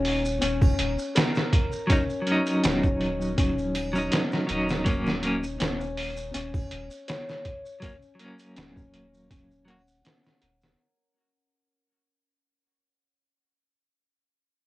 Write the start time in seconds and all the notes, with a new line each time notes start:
Already playing: D#1 C#4 F#4
0.05 open hi-hat
0.25 maracas
0.41 D#1 C#4, closed hi-hat, maracas
0.61 kick, triangle, maracas
0.79 D#1, closed hi-hat
0.99 maracas
1.15 A#4, snare, closed hi-hat, maracas
1.35 snare, maracas
1.53 kick, closed hi-hat
1.72 maracas
1.87 F#3 C#4, kick, closed hi-hat, maracas
1.92 D#4
2.10 maracas
2.22 F#3
2.27 C#4, closed hi-hat
2.32 D#4
2.47 closed hi-hat, maracas
2.63 D#1 C#4, snare, closed hi-hat, maracas
2.84 kick, maracas
3.01 closed hi-hat
3.22 maracas
3.38 D#1 C#4, kick, closed hi-hat, maracas
3.58 maracas
3.75 closed hi-hat, triangle
3.93 F#3 C#4, maracas
3.98 D#4
4.12 A#4, snare, closed hi-hat, maracas
4.32 snare, maracas
4.47 D#1 F#3 C#4, closed hi-hat
4.52 D#4
4.69 snare, maracas
4.85 F#3 A#3 C#4, kick, closed hi-hat, maracas
4.89 C#4
5.06 snare, maracas
5.22 F#3 A#3, closed hi-hat
5.27 C#4
5.44 maracas
5.60 D#1 C#4, snare, closed hi-hat, maracas
5.81 maracas
5.97 open hi-hat
6.17 maracas
6.34 D#1 C#4, closed hi-hat, maracas
6.54 kick, triangle, maracas
6.71 D#1, closed hi-hat
6.91 maracas
7.08 C#5, snare, closed hi-hat, maracas
7.29 snare, maracas
7.45 kick, closed hi-hat
7.66 maracas
7.80 F#3 A#3 C#4, kick, closed hi-hat, maracas
7.85 C#4
8.02 maracas
8.15 F#3
8.19 A#3, closed hi-hat
8.25 C#4
8.39 closed hi-hat, maracas
8.56 D#1 C#4, snare, closed hi-hat, maracas
8.76 kick, maracas
8.94 closed hi-hat
9.14 maracas
9.31 D#1 C#4, kick, closed hi-hat, maracas
9.51 maracas
9.65 F#3 A#3 F#5, closed hi-hat, triangle
9.70 F#4
9.88 maracas
10.04 C#4, snare, closed hi-hat, maracas
10.24 snare, maracas
10.42 D#1 A#4, closed hi-hat
10.61 snare, maracas